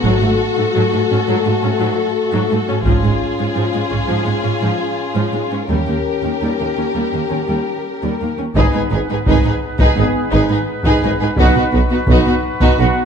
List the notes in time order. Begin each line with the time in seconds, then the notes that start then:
Already playing: F#4
0.02 G#1 G#2 F#3 A3 A4
0.21 G#2 A3
0.57 G#2 A3
0.75 G#2 F#3
0.92 G#2 A3
1.11 G#2 C#4
1.28 G#2 F#3
1.45 G#2 A3
1.63 G#2 C#4
1.79 G#2 F#3
2.33 G#2 F#3
2.50 G#2 A3
2.68 G#2 C#4
2.85 G#1 G#2 F3 C#4 F4 G#4, taiko
3.03 G#2 G#3
3.39 G#2 G#3
3.55 G#2 F3
3.72 G#2 G#3
3.91 G#2 C#4, taiko
4.08 G#2 F3
4.25 G#2 G#3
4.44 G#2 C#4
4.61 G#2 F3
5.15 G#2 F3
5.33 G#2 G#3
5.51 G#2 C#4
5.69 D#2 G3 G4 A#4
5.87 D#2 A#3
6.23 D#2 A#3
6.41 D#2 G3
6.59 D#2 A#3
6.77 D#2 C#4
6.94 D#2 G3
7.12 D#2 A#3
7.30 D#2 C#4
7.48 D#2 G3
8.03 D#2 G3
8.21 D#2 A#3
8.38 D#2 C#4
8.55 G#1 G#2 B3 D#4 G#4 B4, taiko
8.72 G#2 D#4 G#4 B4
8.91 G#1 G#2 D#4 G#4 B4
9.09 G#2 D#4 G#4 B4
9.26 G#1 G#2 D#4 G#4 B4, taiko
9.44 G#2 D#4 G#4 B4
9.79 G#2 D#4 B4, taiko
9.83 G#4
9.96 G#1 G#2 B3 D#4 G#4 B4
10.31 G#1 G#2 D#4 G#4 B4
10.49 G#2 D#4 G#4 B4
10.84 G#2 D#4 G#4 B4, taiko
11.03 G#1 G#2 D#4 G#4 B4
11.20 G#2 D#4 G#4 B4
11.37 B1 B2 B3 D#4 F#4 B4, taiko
11.55 B2 D#4 F#4 B4
11.72 B1 B2 D#4 F#4 B4
11.90 B2 D#4 F#4 B4
12.07 B1 B2 D#4 F#4, taiko
12.11 B4
12.26 B2 D#4 F#4 B4
12.60 B2 D#4 F#4 B4, taiko
12.77 B1 B2 B3 D#4 F#4 B4